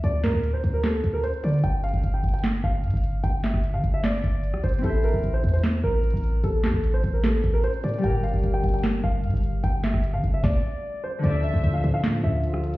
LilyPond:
<<
  \new Staff \with { instrumentName = "Violin section" } { \time 4/4 \key d \minor \tempo 4 = 150 r1 | r1 | r1 | r1 |
r1 | r1 | r1 | e''2 r2 | }
  \new Staff \with { instrumentName = "Grand piano" } { \time 4/4 \key d \minor d''8 bes'8. c''8 bes'16 a'8. bes'16 c''8 d''8 | g''8 f''8. g''8 g''16 r8 f''4. | g''8 e''8. f''8 e''16 d''4. c''8 | a'8 bes'8. c''8 c''16 r8 bes'4. |
a'8 a'8. c''8 bes'16 a'8. bes'16 c''8 d''8 | g''8 f''8. g''8 g''16 r8 f''4. | g''8 e''8. f''8 e''16 d''4. c''8 | d''8 e''8. f''8 f''16 r8 e''4. | }
  \new Staff \with { instrumentName = "Harp" } { \time 4/4 \key d \minor r1 | r1 | r1 | <c' e' c'' e''>1~ |
<c' e' c'' e''>1 | <g g' bes' d''>1~ | <g g' bes' d''>1 | <d f f' d''>1 | }
  \new Staff \with { instrumentName = "French horn section" } { \clef bass \time 4/4 \key d \minor r1 | r1 | r1 | r1 |
r1 | r1 | r1 | <d f f'>1 | }
  \new Staff \with { instrumentName = "808-style bass" } { \clef bass \time 4/4 \key d \minor d,8 a,16 d,8. d,4 d,8 r8 d8 | g,,8. g,,16 g,,8 g,,4 g,,8 g,16 g,,8. | g,,8. g,,8 d16 g,,4 g,,8. d,16 g,,8 | a,,8. a,,16 a,,8 e,4 a,,8. a,,8. |
a,,8 e,16 a,,8. a,,4 a,,8 r8 a,8 | g,,8. g,,16 g,,8 g,,4 g,,8 g,16 g,,8. | g,,8. g,,8 d16 g,,8 r2 | d,8. d,16 d,8 a,4 d,4. | }
  \new DrumStaff \with { instrumentName = "Drums" } \drummode { \time 4/4 hh8 <hc hh sn>8 hh8 hh8 <hc hh sn>8 hh8 hh16 hh16 <hh hho>32 hh32 hh32 hh32 | hh8 hh32 hh32 hh32 hh32 hh8 hh32 hh32 hh32 hh32 <hc hh sn>4 \tuplet 3/2 { hh16 hh16 hh16 hh16 r16 r16 } | hh8 <hc hh sn>16 ss16 hh8 hh8 <hc hh sn>32 hh32 hh32 hh32 hh8 hh16 ss16 hh32 hh32 hh32 hh32 | hh8 hh32 hh32 hh32 hh32 hh8 hh32 hh32 hh32 hh32 <hc sn>4 \tuplet 3/2 { hh16 hh16 hh16 hh16 r16 r16 } |
hh8 <hc hh sn>8 hh8 hh8 <hc hh sn>8 hh8 hh16 hh16 <hh hho>32 hh32 hh32 hh32 | hh8 hh32 hh32 hh32 hh32 hh8 hh32 hh32 hh32 hh32 <hc hh sn>4 \tuplet 3/2 { hh16 hh16 hh16 hh16 r16 r16 } | hh8 <hc hh sn>16 ss16 hh8 hh8 <bd sn>4 r4 | hh8 hh32 hh32 hh32 hh32 hh8 hh8 <hc hh sn>4 hh16 ss16 hh16 hh16 | }
>>